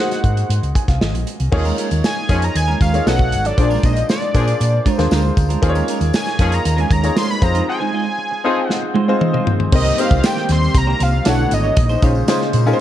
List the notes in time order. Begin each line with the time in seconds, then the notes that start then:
Already playing: A#3 D#4 F#5
0.00 F#4 G#4 C5
0.11 snare, closed hi-hat
0.24 G#2, kick, closed hi-hat
0.37 closed hi-hat
0.49 G#2, closed hi-hat
0.63 C#2, closed hi-hat
0.75 G#5, kick, closed hi-hat
0.88 C2 F5, kick, snare, closed hi-hat
1.01 G#1 D#5, snare
1.14 A#1, closed hi-hat
1.27 closed hi-hat
1.40 C2, closed hi-hat
1.52 D#2 F3 A#3 C#4 D#4 F4 G#4 C#5, muted clean electric guitar stroke, kick, crash
1.65 G#3 C#4 F4 A#4, tambourine
1.78 G#3 C#4 F4 A#4, closed hi-hat, tambourine
1.90 D#2, muted clean electric guitar stroke, closed hi-hat, tambourine
2.03 G#5, muted clean electric guitar stroke, snare, tambourine
2.17 muted clean electric guitar stroke
2.29 F2 F3 A#3 C#4 D#4 F4 G#4 C#5, kick, snare, closed hi-hat, tambourine
2.42 A#5, muted clean electric guitar stroke, closed hi-hat, tambourine
2.55 D#2 G#5, muted clean electric guitar stroke, closed hi-hat, tambourine
2.68 G#3 C#4 F4 A#4
2.81 D#2 G#3 C#4 F4 A#4 F5, kick, closed hi-hat, tambourine
2.93 A#3 D#4 F4 G#4 C#5, muted clean electric guitar stroke, closed hi-hat, tambourine
3.06 B1 F#3 B3 C#4 D#4 F#4 A4 C#5 F#5, snare, tambourine
3.19 muted clean electric guitar stroke, kick
3.32 G#1, muted clean electric guitar stroke, closed hi-hat, tambourine
3.45 F#3 C#4 D#4 A4 D5, closed hi-hat, tambourine
3.58 A#1 F3 A#3 D4 F4 G#4 C5, muted clean electric guitar stroke, kick, closed hi-hat
3.70 G#3 D4 F4 A#4, tambourine
3.83 A#1 G#3 D4 F4 C5 D#5, kick, closed hi-hat, tambourine
3.96 muted clean electric guitar stroke, closed hi-hat, tambourine
4.09 D5, muted clean electric guitar stroke, snare, tambourine
4.22 muted clean electric guitar stroke, closed hi-hat
4.34 A#2 F3 A#3 D4 F4 G#4 C5, kick, closed hi-hat, tambourine
4.48 muted clean electric guitar stroke, closed hi-hat, tambourine
4.60 A#2, muted clean electric guitar stroke, closed hi-hat, tambourine
4.73 muted clean electric guitar stroke
4.86 G#3 D4 F4 A#4, kick, closed hi-hat, tambourine
4.94 C5
4.98 D#2 A#3 D4 F4 G#4 C5, muted clean electric guitar stroke, snare, closed hi-hat, tambourine
5.11 D2 G#3 D4 F4 A#4, snare, tambourine
5.24 muted clean electric guitar stroke
5.37 D2, muted clean electric guitar stroke, kick, closed hi-hat, tambourine
5.49 G#3 D4 F4 A#4, closed hi-hat, tambourine
5.62 D#2 F3 A#3 C#4 D#4 F4 G#4 C5, muted clean electric guitar stroke, kick, closed hi-hat
5.69 C#5
5.75 G#3 C#4 F4 A#4, closed hi-hat, tambourine
5.88 G#3 C#4 F4 A#4, closed hi-hat, tambourine
6.01 D#2, muted clean electric guitar stroke, closed hi-hat, tambourine
6.13 G#5, muted clean electric guitar stroke, snare, tambourine
6.26 muted clean electric guitar stroke, snare, closed hi-hat
6.39 F2 F3 A#3 C#4 D#4 F4 G#4 C#5, kick, snare, closed hi-hat, tambourine
6.51 A#5, muted clean electric guitar stroke, closed hi-hat, tambourine
6.64 D#2, muted clean electric guitar stroke, closed hi-hat, tambourine
6.77 G#3 C#4 F4 A#4 G#5, closed hi-hat
6.90 D#2 G#3 C#4 F4 A#4 A#5, kick, closed hi-hat, tambourine
7.03 A#3 D#4 F4 G#4 C#5, muted clean electric guitar stroke, closed hi-hat, tambourine
7.16 G#3 C#4 F4 A#4 C6, snare, tambourine
7.29 B5, muted clean electric guitar stroke, closed hi-hat
7.41 F2 C4 D#4 F4 G#4 C5 A#5, muted clean electric guitar stroke, kick, closed hi-hat, tambourine
7.54 G#3 D#4 F4 C5, closed hi-hat
7.67 F3 D#4 G#4 G#5, muted clean electric guitar stroke
7.80 G#3 D#4 F4 C5
7.92 G#3 D#4 F4 D#5
8.05 muted clean electric guitar stroke
8.18 muted clean electric guitar stroke
8.31 muted clean electric guitar stroke
8.44 F3 C4 D#4 F4 G#4 C5
8.57 muted clean electric guitar stroke
8.68 F#5, muted clean electric guitar stroke, snare
8.82 muted clean electric guitar stroke
8.94 G#3 D#4 F4 C5, high tom
9.08 C4 D#4 F4 G#4 C5, muted clean electric guitar stroke
9.21 muted clean electric guitar stroke, mid tom
9.33 G#3 D#4 F4 C5, mid tom
9.46 muted clean electric guitar stroke, floor tom
9.59 muted clean electric guitar stroke, floor tom
9.72 C2 D#3 G3 A#3 C4 D#4 G4 A#4 C5 D#5, muted clean electric guitar stroke, kick, crash
9.85 A#3 D#4 G4 C5, tambourine
9.97 A#3 C4 D#4 G4 A#4 C5 F5, closed hi-hat, tambourine
10.10 C2, muted clean electric guitar stroke, kick, tambourine
10.23 G5, muted clean electric guitar stroke, snare, closed hi-hat, tambourine
10.36 muted clean electric guitar stroke, snare
10.49 D#2 C6, snare, closed hi-hat, tambourine
10.61 muted clean electric guitar stroke, tambourine
10.74 C2 A#5, muted clean electric guitar stroke, kick, closed hi-hat, tambourine
10.87 A#3 D#4 G4 C5
10.99 C2 A#3 D#4 G4 C5 F5, closed hi-hat, tambourine
11.12 muted clean electric guitar stroke
11.25 B1 D3 A3 B3 D4 E4 F#4 A4 C#5 F#5, snare, closed hi-hat, tambourine
11.39 muted clean electric guitar stroke
11.51 G#1 D#5, muted clean electric guitar stroke, closed hi-hat, tambourine
11.64 D4 E4 A4 C#5, tambourine
11.77 A#1 C#3 G#3 A#3 D#4 C5, muted clean electric guitar stroke, kick, closed hi-hat
11.89 C#4 D#4 G#4 C5, tambourine
12.02 A#1 C#4 D#4 F4 G#4 C5 C#5, kick, closed hi-hat, tambourine
12.15 muted clean electric guitar stroke, tambourine
12.28 C#4 D#4 F4 G#4 C5, muted clean electric guitar stroke, snare, closed hi-hat, tambourine
12.40 muted clean electric guitar stroke, snare
12.53 A#2, closed hi-hat, tambourine
12.66 C#4 D#4 F4 G#4 A#4, muted clean electric guitar stroke, tambourine
12.73 C5